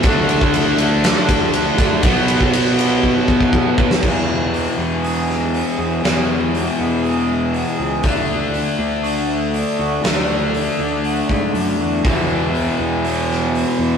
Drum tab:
CC |----------------|----------------|x---------------|----------------|
RD |x-x-x-x-x-x-x-x-|x-x-x-x---------|----------------|----------------|
HH |----------------|----------------|----o---o---o---|o---o---o---o---|
SD |--------o-------|---------------o|----------o-----|o---------------|
BD |o--o------o---o-|o--o----o-ooo-o-|o---------------|----------------|

CC |----------------|----------------|----------------|
RD |----------------|----------------|----------------|
HH |o---o---o---o---|o---o---o---o---|o---o---o---o---|
SD |----------------|o---------------|----------o-----|
BD |o---------------|----------o-----|o---------------|